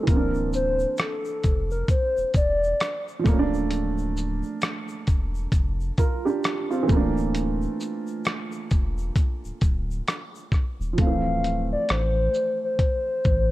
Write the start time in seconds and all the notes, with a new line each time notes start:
0.03 E3, closed hi-hat
0.08 D1 A#3 A#4, kick, shaker
0.12 C4
0.17 D4
0.35 shaker
0.53 C5, shaker
0.79 shaker
0.97 A4, cross-stick, closed hi-hat, shaker
1.25 shaker
1.44 F1, kick, closed hi-hat, shaker
1.71 A#4, shaker
1.88 C5, kick, closed hi-hat, shaker
2.17 E1, shaker
2.34 E1, kick, closed hi-hat, shaker
2.36 D5, shaker
2.64 shaker
2.80 cross-stick, closed hi-hat, shaker
3.08 shaker
3.19 F3
3.24 D1 A3, kick, cross-stick, shaker
3.28 A#3
3.33 C#4
3.39 D4
3.54 shaker
3.71 closed hi-hat, shaker
3.98 shaker
4.17 shaker
4.43 shaker
4.61 cross-stick, closed hi-hat, shaker
4.89 shaker
5.07 E1, kick, closed hi-hat, shaker
5.35 shaker
5.52 F1, kick, closed hi-hat, shaker
5.81 shaker
5.98 F4 A#4, kick, closed hi-hat, shaker
6.25 D4 G4, shaker
6.44 cross-stick, closed hi-hat, shaker
6.71 C4 F4, shaker
6.83 E3
6.88 D1 A3, kick, shaker
6.92 A#3
6.97 D4
7.18 shaker
7.35 closed hi-hat, shaker
7.62 shaker
7.80 shaker
8.07 shaker
8.25 cross-stick, closed hi-hat, shaker
8.52 shaker
8.70 E1, kick, closed hi-hat, shaker
8.98 shaker
9.16 kick, closed hi-hat, shaker
9.44 D1, shaker
9.61 D1, kick, closed hi-hat, shaker
9.91 shaker
10.07 cross-stick, closed hi-hat, shaker
10.35 shaker
10.52 kick, cross-stick, shaker
10.80 D#1, shaker
10.93 F3
10.98 D1 A3 F5, kick, closed hi-hat
11.02 C4
11.07 E3
11.44 closed hi-hat, shaker
11.72 D5
11.89 A1 C5, cross-stick, closed hi-hat
12.34 shaker
12.64 C5
12.79 kick, closed hi-hat
13.25 A1, kick, shaker